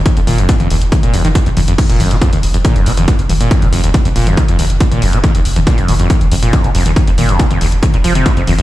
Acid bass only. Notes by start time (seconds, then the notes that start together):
0.17 F2
0.27 A#2
0.38 F2
0.49 C3
0.60 F2
0.70 D#2
0.92 F2
1.03 A#2
1.14 D#2
1.25 D#3
1.35 D#2
1.46 F2
1.57 F2
1.68 F2
1.78 F2
1.89 A#2
2.00 F2
2.11 C3
2.21 F2
2.32 D#2
2.54 F2
2.65 A#2
2.76 F2
2.86 C3
2.97 F2
3.08 D#2
3.29 F2
3.40 A#2
3.51 F2
3.62 C3
3.73 F2
3.84 D#2
4.05 F2
4.16 A#2
4.27 F2
4.37 C3
4.48 F2
4.59 D#2
4.80 F2
4.92 A#2
5.02 F2
5.13 C3
5.24 F2
5.35 D#2
5.56 F2
5.67 A#2
5.78 F2
5.88 C3
5.99 F2
6.10 D#2
6.31 F2
6.43 A#2
6.53 F2
6.64 C3
6.75 F2
6.86 D#2
7.07 F2
7.18 A#2
7.29 F2
7.39 C3
7.51 F2
7.61 D#2
7.83 F2
7.94 A#2
8.04 F3
8.15 C3
8.26 F#2
8.37 F2
8.47 F2
8.58 F2